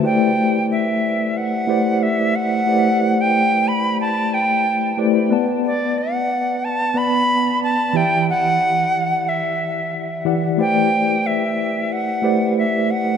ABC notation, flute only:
X:1
M:4/4
L:1/16
Q:"Swing 16ths" 1/4=91
K:Ador
V:1 name="Flute"
g4 e4 f4 e2 f2- | f3 g3 b2 a2 g4 z2 | z2 d2 f4 a2 b4 a2 | g2 f6 e6 z2 |
g4 e4 f4 e2 f2 |]